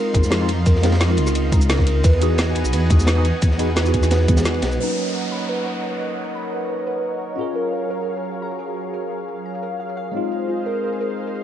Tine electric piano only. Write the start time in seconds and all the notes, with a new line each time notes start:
Already playing: G#3 C4 D#4 F4
0.13 G#3 C4 D#4 F4
0.39 G#3 C4 D#4 F4
0.82 G#3 C4 D#4 F4
1.07 G#3 C4 D#4
1.12 F4
2.20 B3 D#4 F#4 G#4
2.45 B3 D#4 F#4
2.51 G#4
2.89 B3 D#4 F#4 G#4
3.15 B3 D#4 F#4 G#4
3.58 B3 D#4 F#4 G#4
3.83 B3 D#4 F#4
3.89 G#4
4.77 F#3 A#3 C#4
4.83 D#4
7.36 C#4 F4 G#4
7.41 A#4
10.11 G#3 C4 D#4
10.17 F4